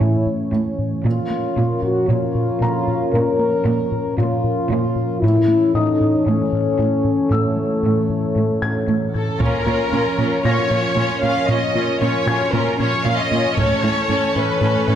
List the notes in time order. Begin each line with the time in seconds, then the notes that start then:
Already playing: E3 A3 C#4 G#4 C#5 G#5
0.01 A2 E4
0.27 A2
0.53 A2
0.79 A2
1.05 A#2 F3 C#4 F4 A#4 C#5
1.31 A#3
1.56 A#2
1.83 A#2 F#4
2.09 A#2 F4
2.35 A#2
2.61 A#2 A#5
2.88 A#2
3.13 A#2 A#4
3.39 A#3
3.65 A#2
3.92 A#2
4.18 A#2 F4
4.44 A#2
4.70 A#2 F4
4.96 A#2
5.21 A2 E3 C#4 E4 A4 C#5
5.48 A3
5.74 A2 D#4 D#6
6.01 A2
6.27 A2 C#4
6.53 A2
6.79 A2
7.05 A2
7.31 A2 A3 E6
7.57 A3
7.83 A2
8.10 A2
8.36 A2
8.62 A2 G#6
8.88 A2
9.14 A2 A4
9.40 A#2 F3 A#3 C#4 F4 A#4 C#5, taiko
9.66 A#2 A#3 C#4 F4
9.91 A#2 C#4 F4
10.18 A#2 C#4 F4
10.44 A#2 A#3 C#4 F4 C#5 A#6
10.70 A#2 C#4 F4
10.96 A#2 C#4 F4
11.22 A#2 C#4 F4 F5
11.48 A#2 A#3 C#4 F4 D#5
11.74 A#2 A#3 C#4 F4
12.00 A#2 C#4 F4 C#5
12.26 A#2 C#4 F4 G#5 G#6
12.53 A#2 A#3 C#4 F4 A#4
12.79 A#2 C#4 F4 C#5
13.05 A#2 C#4 F4 F5
13.19 D#5
13.31 A#2 C#4 F4
13.57 A2 E3 A3 C#4 A4 C#5, taiko
13.83 A2 A3 C#4 E4 A4
14.09 A2 C#4 A4
14.35 A2 C#4 A4 B4
14.61 A2 A3 C#4 A4
14.87 A2 C#4 A4